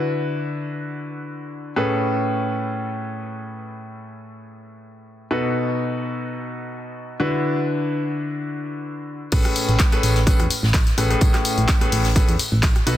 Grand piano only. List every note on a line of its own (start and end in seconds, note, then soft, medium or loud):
0.00 1.74 D3 medium
0.00 1.74 D4 medium
0.00 1.74 E4 medium
0.00 1.74 F#4 medium
0.00 1.74 B4 medium
1.76 5.28 A2 medium
1.76 5.28 C#4 medium
1.76 5.28 G#4 medium
1.76 5.28 A4 medium
1.76 5.28 B4 medium
5.31 7.17 B2 medium
5.31 7.17 D#4 medium
5.31 7.17 F#4 medium
5.31 7.17 A4 medium
5.31 7.17 B4 medium
7.20 9.30 D3 medium
7.20 9.30 D4 medium
7.20 9.30 E4 medium
7.20 9.30 F#4 medium
7.20 9.30 B4 medium
9.32 9.87 A2 loud
9.32 9.87 C#4 medium
9.32 9.87 G#4 medium
9.32 9.87 A4 medium
9.32 9.87 B4 loud
9.92 10.17 A2 loud
9.92 10.17 C#4 medium
9.92 10.17 G#4 medium
9.92 10.17 A4 medium
9.92 10.17 B4 loud
10.27 10.43 A2 medium
10.27 10.43 C#4 medium
10.27 10.43 G#4 medium
10.27 10.43 A4 medium
10.27 10.43 B4 medium
10.98 11.08 A2 medium
10.98 11.08 C#4 medium
10.98 11.08 G#4 medium
10.98 11.08 A4 medium
10.98 11.08 B4 loud
11.10 11.78 A2 medium
11.10 11.78 C#4 medium
11.10 11.78 G#4 medium
11.10 11.78 A4 medium
11.10 11.78 B4 loud
11.81 12.06 A2 loud
11.81 12.06 C#4 medium
11.81 12.06 G#4 medium
11.81 12.06 A4 medium
11.81 12.06 B4 loud
12.16 12.32 A2 medium
12.16 12.32 C#4 medium
12.16 12.32 G#4 medium
12.16 12.32 A4 medium
12.16 12.32 B4 medium
12.87 12.97 B2 medium
12.87 12.97 D#4 medium
12.87 12.97 F#4 medium
12.87 12.97 A4 medium
12.87 12.97 B4 loud